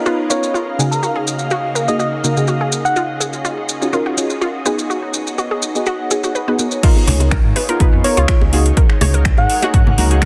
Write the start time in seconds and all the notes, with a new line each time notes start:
Already playing: C#4 D#4 F4 G#4 A#4 B4 C#5 D#5 F5
0.06 B3 C#4 D#4 F4 B4, maracas
0.30 B3 C#4 D#4 F4 A#4 C#5, maracas
0.43 maracas
0.54 F4, maracas
0.78 C#3 A#3 D#4 F#4 G#4, maracas
0.91 A#4, maracas
1.03 F#4, maracas
1.16 G#4
1.27 maracas
1.39 maracas
1.50 F#4, maracas
1.75 A#4, maracas
1.88 C#3 A#3 D#4 F#4 G#4 D#5, maracas
1.99 F#4 D#5, maracas
2.23 C#3 A#3 D#4 F#4 A#4, maracas
2.36 C#3 A#3 D#4 F#4 G#4, maracas
2.47 F#4, maracas
2.61 G#4
2.72 maracas
2.85 F#5, maracas
2.96 C#4 F4 F#4, maracas
3.15 C#5
3.20 G#4, maracas
3.33 maracas
3.45 F4, maracas
3.69 maracas
3.82 C#4 D#4 F4 F#4 G#4, maracas
3.93 C#4 D#4 F4 F#4 A#4, maracas
4.06 F#4
4.17 C#4 D#4 F4 F#4 G#4, maracas
4.30 maracas
4.41 F4, maracas
4.65 B3 D#4 F#4 G#4 B4 D#5, maracas
4.79 maracas
4.90 F#4, maracas
5.14 maracas
5.27 maracas
5.38 F#4 F#5, maracas
5.51 G#4
5.62 maracas
5.75 B3 D#4 F#4 G#4, maracas
5.86 F#4, maracas
6.11 B3 D#4 F#4 G#4, maracas
6.24 F#4, maracas
6.35 B4, maracas
6.48 B3 D#4 F#4 G#4 B4
6.59 B3 D#4 F#4 A#4, maracas
6.71 maracas
6.83 B3 D#4 F4 A#4, kick, closed hi-hat, crash
6.96 high bongo
7.07 C#2, open hi-hat, low conga
7.20 closed hi-hat, high bongo
7.31 A#4, finger snap, kick, closed hi-hat, high conga
7.45 G#2
7.56 B4 F5, open hi-hat, high bongo
7.69 B3 D#4 F4 A#4, closed hi-hat
7.80 B1 B3 D#4 F4 B4, kick, closed hi-hat, high bongo
7.93 F2
8.04 B3 D#4 F4 A#4 C#5, open hi-hat
8.17 C#2 F4, closed hi-hat, high bongo
8.28 F4, finger snap, kick, closed hi-hat
8.41 C#2, high bongo
8.52 G#3 A#3 D#4 F#4 G#4 A#4, open hi-hat
8.66 closed hi-hat
8.77 A#4, kick, closed hi-hat, high bongo
8.90 finger snap
9.01 C#2 C#5, open hi-hat, high bongo, low conga
9.14 A#4, closed hi-hat
9.25 finger snap, kick, closed hi-hat, high conga
9.32 F#5
9.38 G#2 F#5, high bongo
9.50 open hi-hat
9.62 A#3 D#4 F#4 G#4, closed hi-hat, high bongo
9.74 G#2 F#4, kick, closed hi-hat
9.87 G#2, low conga
9.98 C#2 A#3 D#4 F#4 A#4, open hi-hat, high bongo, high conga
10.10 A#3 D#4 F#4 G#4, closed hi-hat
10.22 A#4, finger snap, kick, closed hi-hat, high bongo